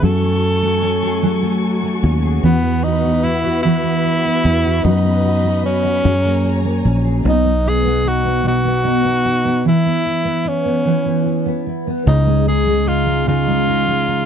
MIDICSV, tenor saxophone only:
0, 0, Header, 1, 2, 480
1, 0, Start_track
1, 0, Key_signature, 5, "major"
1, 0, Tempo, 802139
1, 17, Time_signature, 6, 3, 24, 8
1, 8530, End_track
2, 0, Start_track
2, 0, Title_t, "Tenor saxophone"
2, 0, Program_c, 0, 66
2, 26, Note_on_c, 0, 69, 94
2, 1199, Note_off_c, 0, 69, 0
2, 1461, Note_on_c, 0, 59, 85
2, 1696, Note_on_c, 0, 63, 88
2, 1705, Note_off_c, 0, 59, 0
2, 1935, Note_on_c, 0, 64, 95
2, 1944, Note_off_c, 0, 63, 0
2, 2166, Note_off_c, 0, 64, 0
2, 2170, Note_on_c, 0, 64, 105
2, 2894, Note_on_c, 0, 63, 94
2, 2903, Note_off_c, 0, 64, 0
2, 3377, Note_off_c, 0, 63, 0
2, 3381, Note_on_c, 0, 61, 112
2, 4077, Note_off_c, 0, 61, 0
2, 4359, Note_on_c, 0, 63, 94
2, 4597, Note_on_c, 0, 68, 94
2, 4606, Note_off_c, 0, 63, 0
2, 4833, Note_on_c, 0, 66, 88
2, 4842, Note_off_c, 0, 68, 0
2, 5066, Note_off_c, 0, 66, 0
2, 5072, Note_on_c, 0, 66, 99
2, 5761, Note_off_c, 0, 66, 0
2, 5793, Note_on_c, 0, 64, 93
2, 6268, Note_on_c, 0, 61, 83
2, 6277, Note_off_c, 0, 64, 0
2, 6982, Note_off_c, 0, 61, 0
2, 7228, Note_on_c, 0, 63, 94
2, 7446, Note_off_c, 0, 63, 0
2, 7467, Note_on_c, 0, 68, 99
2, 7704, Note_on_c, 0, 65, 91
2, 7713, Note_off_c, 0, 68, 0
2, 7940, Note_off_c, 0, 65, 0
2, 7946, Note_on_c, 0, 65, 100
2, 8530, Note_off_c, 0, 65, 0
2, 8530, End_track
0, 0, End_of_file